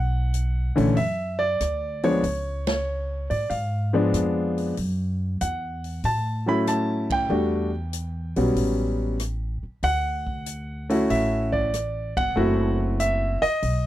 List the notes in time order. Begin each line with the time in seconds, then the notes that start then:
Already playing: B1 F#5
0.34 closed hi-hat
0.76 A#1 D3 E3 A3 C#4, open hi-hat
0.97 F#2 E5, open hi-hat
1.39 D5
1.60 D2, cross-stick, closed hi-hat
2.03 F3 G#3 B3 D4 C#5, open hi-hat
2.23 C#2, open hi-hat
2.67 C#5, snare, ride
3.30 G#2 D5, open hi-hat
3.50 G#2 F5, open hi-hat
3.93 F3 G#3 B3 D4
4.13 F2, cross-stick, closed hi-hat
4.58 open hi-hat
4.77 F#2, open hi-hat
5.41 E2 F#5, closed hi-hat
5.84 open hi-hat
6.04 A2 A5, open hi-hat
6.46 F#3 A3 C#4 E4 B5
6.67 A5, cross-stick, closed hi-hat
7.10 G5, kick, ride
7.30 E2 G3 A3 D4 F#4
7.93 closed hi-hat
8.36 B1 F#3 G3 B3 C#4, open hi-hat
8.55 A1, open hi-hat
9.19 cross-stick, closed hi-hat
9.63 muted upright bass stroke
9.83 D2 F#5, open hi-hat
10.27 kick
10.46 closed hi-hat
10.90 A3 C#4 E4 F#4, open hi-hat
11.10 A1 E5, open hi-hat
11.52 D5, kick
11.73 cross-stick, closed hi-hat
12.17 G1 F#5, kick, ride
12.36 F#1 A3 C4 E4 F#4
13.00 E5, closed hi-hat
13.42 D#5, muted upright bass stroke, open hi-hat
13.63 B1, open hi-hat